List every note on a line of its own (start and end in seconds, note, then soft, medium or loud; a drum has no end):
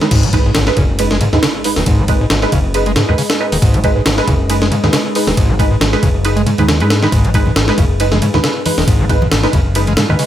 0.00 0.08 D#3 medium
0.00 0.31 G#3 medium
0.00 0.31 D#4 medium
0.00 0.31 B4 medium
0.00 0.10 C#5 medium
0.00 snare soft
0.11 0.50 G#1 loud
0.11 0.26 G#2 medium
0.11 10.26 G#3 medium
0.11 10.26 G#4 medium
0.11 10.26 B4 medium
0.11 7.11 D#5 medium
0.11 kick loud
0.11 crash medium
0.11 ride medium
0.11 impact medium
0.23 0.29 G#3 medium
0.23 ride soft
0.33 0.53 G#3 medium
0.33 0.53 D#4 medium
0.33 0.53 B4 loud
0.33 kick medium
0.33 ride medium
0.46 0.51 G#2 medium
0.55 0.71 G#1 medium
0.55 0.60 D#3 medium
0.55 snare loud
0.55 ride medium
0.67 0.78 G#3 loud
0.67 0.78 D#4 medium
0.67 0.78 B4 loud
0.67 snare medium
0.77 1.20 F#1 medium
0.77 0.84 C#3 medium
0.77 kick loud
0.77 ride medium
0.99 1.12 G#3 medium
0.99 1.12 D#4 medium
0.99 1.12 B4 loud
0.99 ride medium
1.11 1.17 G#3 medium
1.11 snare medium
1.21 1.29 G#2 medium
1.21 1.25 C#3 medium
1.21 ride medium
1.33 1.40 D#2 medium
1.33 1.39 G#2 medium
1.33 1.63 G#3 medium
1.33 1.63 D#4 medium
1.33 1.63 B4 medium
1.33 snare soft
1.43 1.47 C#3 medium
1.43 snare loud
1.43 ride medium
1.64 1.84 G#3 medium
1.64 1.84 D#4 medium
1.64 1.84 B4 medium
1.64 open hi-hat medium
1.76 1.83 D#1 medium
1.76 1.83 D#3 medium
1.76 snare medium
1.86 2.25 G#1 loud
1.86 2.01 G#2 medium
1.86 kick loud
1.86 ride medium
1.99 2.05 G#3 medium
2.08 2.28 G#3 medium
2.08 2.28 D#4 medium
2.08 2.28 B4 loud
2.08 kick loud
2.08 ride medium
2.21 2.26 G#2 medium
2.30 2.46 G#1 medium
2.30 2.35 D#3 medium
2.30 snare loud
2.30 ride medium
2.42 2.53 G#3 loud
2.42 2.53 D#4 medium
2.42 2.53 B4 loud
2.42 snare soft
2.52 2.96 F#1 medium
2.52 2.59 C#3 medium
2.52 kick loud
2.52 ride medium
2.74 2.87 G#3 medium
2.74 2.87 D#4 medium
2.74 2.87 B4 loud
2.74 ride medium
2.86 2.92 G#3 medium
2.86 ride soft
2.96 3.04 G#2 medium
2.96 3.01 C#3 medium
2.96 snare loud
2.96 ride medium
3.09 3.15 D#2 medium
3.09 3.14 G#2 medium
3.09 3.38 G#3 medium
3.09 3.38 D#4 medium
3.09 3.38 B4 medium
3.18 3.22 C#3 medium
3.18 open hi-hat medium
3.30 snare loud
3.30 ride medium
3.40 3.59 G#3 medium
3.40 3.59 D#4 medium
3.40 3.59 B4 medium
3.52 3.59 D#1 medium
3.52 3.58 D#3 medium
3.52 open hi-hat medium
3.62 4.01 G#1 loud
3.62 3.76 G#2 medium
3.62 kick loud
3.62 ride medium
3.74 3.80 G#3 medium
3.74 ride soft
3.84 4.03 G#3 loud
3.84 4.03 D#4 medium
3.84 4.03 B4 loud
3.84 kick medium
3.84 ride medium
3.96 4.01 G#2 medium
4.06 4.21 G#1 medium
4.06 4.10 D#3 medium
4.06 snare loud
4.06 ride medium
4.18 4.29 G#3 loud
4.18 4.29 D#4 medium
4.18 4.29 B4 loud
4.18 snare medium
4.28 4.71 F#1 loud
4.28 4.35 C#3 medium
4.28 kick loud
4.28 ride medium
4.50 4.62 G#3 medium
4.50 4.62 D#4 medium
4.50 4.62 B4 loud
4.50 ride medium
4.62 4.67 G#3 medium
4.62 snare medium
4.71 4.80 G#2 medium
4.71 4.76 C#3 medium
4.71 ride medium
4.84 4.90 D#2 medium
4.84 4.89 G#2 medium
4.84 5.13 G#3 medium
4.84 5.13 D#4 medium
4.84 5.13 B4 loud
4.84 snare soft
4.93 4.97 C#3 medium
4.93 snare loud
4.93 ride medium
5.15 5.35 G#3 medium
5.15 5.35 D#4 medium
5.15 5.35 B4 medium
5.15 open hi-hat medium
5.27 5.34 D#1 medium
5.27 5.33 D#3 medium
5.27 snare medium
5.37 5.76 G#1 loud
5.37 5.51 G#2 medium
5.37 kick loud
5.37 ride medium
5.49 5.55 G#3 medium
5.59 5.78 G#3 medium
5.59 5.78 D#4 medium
5.59 5.78 B4 loud
5.59 kick medium
5.59 ride medium
5.71 5.76 G#2 medium
5.81 5.96 G#1 medium
5.81 5.85 D#3 medium
5.81 snare loud
5.81 ride medium
5.93 6.04 G#3 loud
5.93 6.04 D#4 medium
5.93 6.04 B4 loud
5.93 snare soft
6.03 6.46 F#1 loud
6.03 6.09 C#3 medium
6.03 kick loud
6.03 ride medium
6.25 6.38 G#3 medium
6.25 6.38 D#4 medium
6.25 6.38 B4 loud
6.25 ride medium
6.36 6.42 G#3 medium
6.36 ride soft
6.46 6.55 G#2 medium
6.46 6.51 C#3 medium
6.46 ride medium
6.58 6.82 D#2 medium
6.58 6.64 G#2 medium
6.58 6.70 G#3 medium
6.58 6.70 D#4 medium
6.58 6.69 B4 loud
6.58 ride soft
6.68 6.73 C#3 medium
6.68 snare loud
6.68 ride medium
6.80 7.07 G#2 loud
6.80 6.92 G#3 medium
6.80 6.92 D#4 medium
6.80 6.92 B4 medium
6.80 ride soft
6.90 snare loud
6.90 ride medium
7.02 7.08 D#3 medium
7.02 7.32 G#3 medium
7.02 7.32 D#4 medium
7.02 7.32 B4 medium
7.02 snare medium
7.12 7.51 G#1 loud
7.12 7.26 G#2 medium
7.12 10.26 F5 medium
7.12 kick loud
7.12 ride medium
7.25 7.30 G#3 medium
7.25 ride soft
7.34 7.54 G#3 medium
7.34 7.53 D#4 medium
7.34 7.54 B4 loud
7.34 kick loud
7.34 ride medium
7.46 7.52 G#2 medium
7.46 high conga medium
7.46 low conga medium
7.56 7.71 G#1 medium
7.56 7.60 D#3 medium
7.56 snare loud
7.56 ride medium
7.68 7.79 G#3 loud
7.68 7.79 D#4 medium
7.68 7.79 B4 loud
7.68 snare medium
7.78 8.22 F#1 loud
7.78 7.85 C#3 medium
7.78 kick medium
7.78 ride medium
7.78 low conga medium
8.00 8.13 G#3 medium
8.00 8.13 D#4 medium
8.00 8.13 B4 loud
8.00 ride medium
8.12 8.18 G#3 medium
8.12 snare medium
8.12 high conga medium
8.22 8.30 G#2 medium
8.22 8.26 C#3 medium
8.22 ride medium
8.34 8.41 D#2 medium
8.34 8.40 G#2 medium
8.34 8.64 G#3 medium
8.34 8.64 D#4 medium
8.34 8.64 B4 medium
8.34 snare soft
8.44 8.48 C#3 medium
8.44 snare loud
8.44 ride medium
8.66 8.85 G#3 medium
8.66 8.85 D#4 medium
8.66 8.85 B4 loud
8.66 open hi-hat medium
8.66 high conga loud
8.78 8.84 D#1 medium
8.78 8.84 D#3 medium
8.78 snare medium
8.87 9.26 G#1 loud
8.87 9.02 G#2 medium
8.87 kick loud
8.87 ride medium
9.00 9.05 G#3 medium
9.10 9.29 G#3 medium
9.10 9.29 D#4 medium
9.10 9.29 B4 loud
9.10 kick loud
9.10 ride medium
9.22 9.27 G#2 medium
9.22 high conga medium
9.22 low conga medium
9.32 9.47 G#1 medium
9.32 9.36 D#3 medium
9.32 snare loud
9.32 ride medium
9.44 9.54 G#3 loud
9.44 9.54 D#4 medium
9.44 9.54 B4 loud
9.44 snare soft
9.53 9.97 F#1 medium
9.53 9.60 C#3 medium
9.53 kick loud
9.53 ride medium
9.53 low conga medium
9.75 9.88 G#3 medium
9.75 9.88 D#4 medium
9.75 9.88 B4 loud
9.75 ride medium
9.87 9.93 G#3 medium
9.87 ride soft
9.87 high conga medium
9.97 10.05 G#2 medium
9.97 10.02 C#3 medium
9.97 snare loud
9.97 ride medium
10.09 10.16 D#2 loud
10.09 10.15 G#2 medium
10.09 10.26 G#3 medium
10.09 10.26 D#4 medium
10.09 10.26 B4 medium
10.19 10.23 C#3 medium
10.19 open hi-hat medium